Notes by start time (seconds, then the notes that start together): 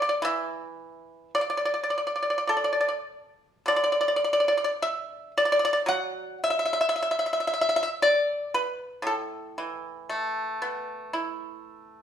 Already playing: E3
0.02 D5
0.09 D5
0.22 E3 E5
1.35 D5
1.41 D5
1.50 D5
1.57 D5
1.65 D5
1.74 D5
1.83 D5
1.90 D5
1.98 D5
2.07 D5
2.16 D5
2.23 D5
2.30 D5
2.38 D5
2.47 A4 D5
2.57 D5
2.64 D5
2.73 D5
2.81 D5
2.88 D5
3.66 D3 D5
3.76 D5
3.84 D5
3.92 D5
4.01 D5
4.08 D5
4.16 D5
4.24 D5
4.33 D5
4.40 D5
4.48 D5
4.57 D5
4.64 D5
4.82 E5
5.38 D5
5.45 D5
5.52 D5
5.59 D5
5.65 D5
5.73 D5
5.86 F#3 F#5
6.44 E5
6.50 E5
6.59 E5
6.65 E5
6.73 E5
6.81 E5
6.89 E5
6.96 E5
7.03 E5
7.11 E5
7.19 E5
7.26 E5
7.33 E5
7.40 E5
7.47 E5
7.54 E5
7.61 E5
7.69 E5
7.76 E5
7.83 E5
8.02 D5
8.54 B4
9.02 A2
9.07 A4
9.58 E3
10.09 A3
10.62 B3
11.13 E4